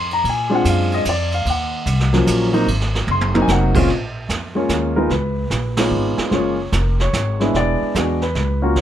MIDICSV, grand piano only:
0, 0, Header, 1, 2, 480
1, 0, Start_track
1, 0, Tempo, 405954
1, 281, Time_signature, 3, 2, 24, 8
1, 10417, End_track
2, 0, Start_track
2, 0, Title_t, "Grand piano"
2, 0, Program_c, 0, 0
2, 0, Note_on_c, 0, 84, 97
2, 133, Note_off_c, 0, 84, 0
2, 156, Note_on_c, 0, 82, 88
2, 296, Note_off_c, 0, 82, 0
2, 348, Note_on_c, 0, 80, 83
2, 586, Note_on_c, 0, 56, 71
2, 599, Note_on_c, 0, 60, 64
2, 600, Note_on_c, 0, 62, 63
2, 606, Note_on_c, 0, 65, 80
2, 622, Note_off_c, 0, 80, 0
2, 647, Note_on_c, 0, 78, 95
2, 781, Note_off_c, 0, 78, 0
2, 815, Note_on_c, 0, 77, 85
2, 1094, Note_off_c, 0, 77, 0
2, 1113, Note_on_c, 0, 75, 89
2, 1201, Note_off_c, 0, 56, 0
2, 1207, Note_off_c, 0, 60, 0
2, 1207, Note_off_c, 0, 62, 0
2, 1211, Note_off_c, 0, 65, 0
2, 1253, Note_off_c, 0, 75, 0
2, 1290, Note_on_c, 0, 74, 79
2, 1571, Note_off_c, 0, 74, 0
2, 1589, Note_on_c, 0, 77, 86
2, 1730, Note_off_c, 0, 77, 0
2, 1772, Note_on_c, 0, 78, 87
2, 2516, Note_on_c, 0, 54, 80
2, 2518, Note_on_c, 0, 58, 70
2, 2528, Note_on_c, 0, 61, 65
2, 2531, Note_on_c, 0, 53, 85
2, 2961, Note_off_c, 0, 54, 0
2, 2963, Note_off_c, 0, 58, 0
2, 2968, Note_off_c, 0, 61, 0
2, 2969, Note_off_c, 0, 53, 0
2, 2987, Note_on_c, 0, 54, 79
2, 2995, Note_on_c, 0, 58, 77
2, 2998, Note_on_c, 0, 60, 68
2, 3003, Note_on_c, 0, 63, 90
2, 3135, Note_off_c, 0, 78, 0
2, 3136, Note_off_c, 0, 54, 0
2, 3140, Note_off_c, 0, 58, 0
2, 3142, Note_off_c, 0, 60, 0
2, 3144, Note_off_c, 0, 63, 0
2, 3683, Note_on_c, 0, 84, 81
2, 3953, Note_on_c, 0, 54, 75
2, 3953, Note_on_c, 0, 58, 69
2, 3961, Note_on_c, 0, 60, 66
2, 3964, Note_on_c, 0, 63, 85
2, 4030, Note_off_c, 0, 84, 0
2, 4042, Note_on_c, 0, 80, 95
2, 4116, Note_off_c, 0, 80, 0
2, 4155, Note_on_c, 0, 78, 90
2, 4399, Note_off_c, 0, 54, 0
2, 4399, Note_off_c, 0, 58, 0
2, 4403, Note_off_c, 0, 60, 0
2, 4405, Note_off_c, 0, 63, 0
2, 4434, Note_on_c, 0, 46, 90
2, 4436, Note_on_c, 0, 56, 75
2, 4439, Note_on_c, 0, 60, 82
2, 4446, Note_on_c, 0, 61, 83
2, 4452, Note_on_c, 0, 65, 96
2, 4506, Note_off_c, 0, 78, 0
2, 4579, Note_off_c, 0, 46, 0
2, 4580, Note_off_c, 0, 56, 0
2, 4582, Note_off_c, 0, 60, 0
2, 4585, Note_off_c, 0, 61, 0
2, 4588, Note_off_c, 0, 65, 0
2, 5380, Note_on_c, 0, 56, 59
2, 5386, Note_on_c, 0, 58, 56
2, 5388, Note_on_c, 0, 61, 60
2, 5392, Note_on_c, 0, 65, 67
2, 5396, Note_on_c, 0, 73, 72
2, 5833, Note_off_c, 0, 56, 0
2, 5837, Note_off_c, 0, 58, 0
2, 5837, Note_off_c, 0, 61, 0
2, 5839, Note_off_c, 0, 65, 0
2, 5840, Note_off_c, 0, 73, 0
2, 5868, Note_on_c, 0, 70, 81
2, 5874, Note_on_c, 0, 56, 69
2, 5877, Note_on_c, 0, 59, 66
2, 5881, Note_on_c, 0, 63, 67
2, 5885, Note_on_c, 0, 65, 73
2, 6019, Note_off_c, 0, 56, 0
2, 6021, Note_off_c, 0, 59, 0
2, 6023, Note_off_c, 0, 63, 0
2, 6025, Note_off_c, 0, 65, 0
2, 6028, Note_off_c, 0, 70, 0
2, 6053, Note_on_c, 0, 71, 69
2, 6793, Note_off_c, 0, 71, 0
2, 6833, Note_on_c, 0, 56, 64
2, 6835, Note_on_c, 0, 59, 61
2, 6838, Note_on_c, 0, 73, 72
2, 6839, Note_on_c, 0, 63, 60
2, 6844, Note_on_c, 0, 65, 73
2, 7434, Note_off_c, 0, 73, 0
2, 7443, Note_off_c, 0, 56, 0
2, 7444, Note_on_c, 0, 72, 46
2, 7445, Note_off_c, 0, 59, 0
2, 7447, Note_off_c, 0, 63, 0
2, 7450, Note_off_c, 0, 65, 0
2, 7461, Note_on_c, 0, 56, 67
2, 7468, Note_on_c, 0, 58, 53
2, 7472, Note_on_c, 0, 61, 56
2, 7480, Note_on_c, 0, 65, 71
2, 7481, Note_off_c, 0, 72, 0
2, 7496, Note_on_c, 0, 73, 76
2, 7753, Note_off_c, 0, 56, 0
2, 7757, Note_off_c, 0, 58, 0
2, 7759, Note_off_c, 0, 61, 0
2, 7763, Note_off_c, 0, 65, 0
2, 7934, Note_off_c, 0, 73, 0
2, 7974, Note_on_c, 0, 70, 50
2, 8273, Note_off_c, 0, 70, 0
2, 8291, Note_on_c, 0, 73, 83
2, 8752, Note_on_c, 0, 56, 72
2, 8757, Note_on_c, 0, 59, 65
2, 8763, Note_on_c, 0, 62, 65
2, 8767, Note_on_c, 0, 64, 80
2, 8883, Note_off_c, 0, 73, 0
2, 8943, Note_on_c, 0, 74, 85
2, 9366, Note_off_c, 0, 56, 0
2, 9368, Note_off_c, 0, 59, 0
2, 9371, Note_off_c, 0, 62, 0
2, 9373, Note_off_c, 0, 64, 0
2, 9405, Note_on_c, 0, 56, 59
2, 9408, Note_on_c, 0, 59, 48
2, 9417, Note_on_c, 0, 62, 53
2, 9422, Note_on_c, 0, 66, 62
2, 9681, Note_off_c, 0, 74, 0
2, 9688, Note_off_c, 0, 56, 0
2, 9689, Note_off_c, 0, 59, 0
2, 9694, Note_off_c, 0, 62, 0
2, 9696, Note_off_c, 0, 66, 0
2, 9726, Note_on_c, 0, 71, 76
2, 10169, Note_off_c, 0, 71, 0
2, 10195, Note_on_c, 0, 58, 65
2, 10195, Note_on_c, 0, 61, 61
2, 10198, Note_on_c, 0, 70, 65
2, 10205, Note_on_c, 0, 65, 65
2, 10207, Note_on_c, 0, 66, 70
2, 10344, Note_off_c, 0, 58, 0
2, 10344, Note_off_c, 0, 61, 0
2, 10349, Note_off_c, 0, 65, 0
2, 10350, Note_off_c, 0, 66, 0
2, 10357, Note_off_c, 0, 70, 0
2, 10370, Note_on_c, 0, 73, 73
2, 10417, Note_off_c, 0, 73, 0
2, 10417, End_track
0, 0, End_of_file